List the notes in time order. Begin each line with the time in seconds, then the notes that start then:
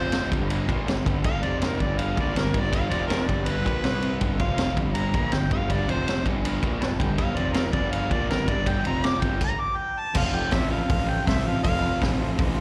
Already playing: F1 F2 C3 F3 C4 F4 C5
0.12 snare, ride
0.29 G1 G2 D3 G3 D4 G4 B4, kick
0.33 ride
0.50 ride
0.68 A#1 A#2 F3 A#3 D4 G4 B4, kick, ride
0.86 G1 G2 D3 D4 G4 A4, snare, ride
1.05 G1 G2 D3 G3 D4 G4 B4, kick, ride
1.23 G1 G2 D3 G3 D4 G4 A4 F5, kick, ride
1.43 F1 F2 C3 F3 C4 F4 C5 D5, ride
1.62 A#4, snare, ride
1.78 G1 G2 D3 G3 D4 G4 B4 D5, kick, ride
1.98 F5, ride
2.14 A#1 A#2 D4 G4 A4, kick, ride
2.18 F3 A#3 D5
2.32 G1 G2 D3 D4 G4 D5, ride
2.37 A#4, snare
2.51 G1 G2 D3 G3 D4 G4 B4, kick, ride
2.59 D5
2.71 G1 G2 D3 G3 D4 G4 B4, kick, ride
2.75 F5
2.89 F1 F2 C3 F3 C4 F4 C5 D5, ride
3.07 A#4, snare, ride
3.27 G1 G2 D3 G3 D4 G4 B4 D5, kick, ride
3.46 B4, ride
3.64 A#1 A#2 F3 A#3 D4 G4 B4, kick, ride
3.82 C2 C3 G3 C4 G4 C5, snare, ride
4.00 C4 G4 C5, ride
4.19 G1 G2 D3 G3 D4 G4 B4, kick, ride
4.39 F1 F2 C3 F3 C4 F4 C5 F5, kick, ride
4.58 snare, ride
4.74 G1 G2 D3 G3 D4 G4 B4, kick, ride
4.94 A#5, ride
5.11 A#1 A#2 F3 A#3 D4 G4 B4, kick, ride
5.32 G1 G2 D3 D4 G4 B4 G5, snare, ride
5.50 G1 G2 D3 G3 D4 G4 B4 F5, kick, ride
5.67 G1 G2 D3 G3 D4 G4 B4, kick, ride
5.72 D5
5.87 F1 F2 C3 F3 C4 F4 C5, ride
6.08 snare, ride
6.25 G1 G2 D3 G3 D4 G4 B4, kick, ride
6.45 ride
6.61 A#1 A#2 F3 A#3 D4 G4 B4, kick, ride
6.79 G1 G2 D3 D4 G4 B4 A5, snare, ride
6.99 G1 G2 D3 G3 D4 G4 B4 G5, kick, ride
7.17 G1 G2 D3 G3 D4 G4 B4 F5, kick, ride
7.33 F1 F2 C4 F4 C5 D5, ride
7.37 C3 F3
7.53 A#4, snare, ride
7.72 G1 G2 D3 G3 D4 G4 B4 D5, kick, ride
7.92 F5, ride
8.10 A#1 A#2 F3 A#3 D4 G4 D5, kick, ride
8.28 G1 G2 D3 D4 G4 A#4 B4, snare, ride
8.48 G1 G2 D3 G3 D4 G4 B4 D5, kick, ride
8.66 G1 G2 D3 G3 D4 G4 D5 G5, kick, ride
8.84 F1 F2 C3 F3 C4 F4 C5 A#5, ride
9.04 D6, snare, ride
9.21 G1 G2 D3 G3 D4 G4 B4 G5, kick, ride
9.41 A#5, kick, crash
9.60 D6
9.76 G5
9.99 A5
10.14 F1 F2 C3 F3 F4 A4 C5 F5, kick, crash
10.33 F3 F4 A4 D5 G5
10.37 C3
10.51 A1 F2 C3 F4 A4 D5 E5, kick, snare, open hi-hat
10.57 F3
10.69 F3 F4 A4 B4 F5
10.75 C3
10.88 A1 F4 A4 C5 F5, kick, open hi-hat
11.06 F4 A4 C5 G5
11.25 C2 F2 F4 A4 C5 E5, kick, open hi-hat
11.29 C3 F3, snare
11.44 A1 F3 F4 A4 C5 F5
11.49 C3
11.62 F1 F2 F4 A4 C5 F5, kick, open hi-hat
11.67 C3 F3
11.78 F4 A4 B4
11.83 C3 F3
12.00 A1 F2 C3 F4 A4 B4, kick, snare, open hi-hat
12.04 F3
12.19 F3 F4 A4 C5
12.23 C3
12.36 A1 F4 A4 C5, kick, open hi-hat
12.54 F4 A4 C5